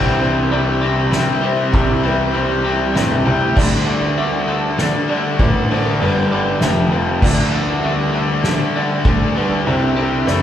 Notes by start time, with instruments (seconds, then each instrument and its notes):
Already playing: grand piano C2, overdriven electric guitar C3 G3 C4, clean electric guitar E3 G3 G4, ambient pad G3 C4 E4 G4 E5, felt piano C5
0.20 overdriven electric guitar C3 G3 C4, clean electric guitar E3, ride
0.51 overdriven electric guitar C3 G3 C4, felt piano D5, ride
0.81 overdriven electric guitar C3 G3 C4, clean electric guitar G4
1.11 overdriven electric guitar C3 G3 C4, clean electric guitar E4, snare, ride
1.41 overdriven electric guitar C3 G3 C4, felt piano C5
1.72 grand piano C2, overdriven electric guitar C3 G3 C4, kick, ride
2.03 overdriven electric guitar C3 G3 C4, clean electric guitar E3, felt piano B4, ride
2.34 overdriven electric guitar C3 G3 C4, felt piano C5, ride
2.63 overdriven electric guitar C3 G3 C4, clean electric guitar G4
2.95 grand piano A1, overdriven electric guitar C3 G3 C4, clean electric guitar E4, felt piano D5, snare, ride
3.11 grand piano B1
3.25 grand piano C2, overdriven electric guitar C3 G3 C4, felt piano E5
3.43 grand piano D2
3.55 grand piano D2, overdriven electric guitar D3 A3 D4, ambient pad A3 D4 A4 D5, felt piano D5, kick, crash
3.86 overdriven electric guitar D3 A3 D4, ride
4.17 overdriven electric guitar D3 A3 D4, clean electric guitar G3, felt piano E5, ride
4.47 overdriven electric guitar D3 A3 D4, clean electric guitar A4
4.78 overdriven electric guitar D3 A3 D4, snare, ride
5.08 overdriven electric guitar D3 A3 D4, clean electric guitar G3, felt piano D5
5.39 grand piano A1, overdriven electric guitar D3 A3 D4, kick, ride
5.70 overdriven electric guitar D3 A3 D4, felt piano C5, ride
6.00 grand piano G1, overdriven electric guitar G2 D3 G3, felt piano D5, ride
6.32 overdriven electric guitar G2 D3 G3, clean electric guitar D5
6.61 grand piano F1, overdriven electric guitar F2 C3 F3, felt piano E5, snare, ride
6.91 overdriven electric guitar F2 C3 F3, clean electric guitar C4, felt piano F5
7.20 grand piano D2, overdriven electric guitar D3 A3 D4, ambient pad G3 A3 D4 A4 D5, felt piano D5, kick, crash
7.52 overdriven electric guitar D3 A3 D4, ride
7.82 overdriven electric guitar D3 A3 D4, clean electric guitar G3, felt piano E5, ride
8.13 overdriven electric guitar D3 A3 D4, clean electric guitar A4
8.44 overdriven electric guitar D3 A3 D4, clean electric guitar G4, snare, ride
8.75 overdriven electric guitar D3 A3 D4, clean electric guitar G3, felt piano D5
9.05 grand piano D2, overdriven electric guitar D3 A3 D4, kick, ride
9.35 overdriven electric guitar D3 A3 D4, felt piano B4, ride
9.66 grand piano C2, overdriven electric guitar C3 G3 C4, felt piano C5, ride
9.96 overdriven electric guitar C3 G3 C4, clean electric guitar G4
10.26 grand piano F#1, overdriven electric guitar A2 E3 A3, felt piano D5, snare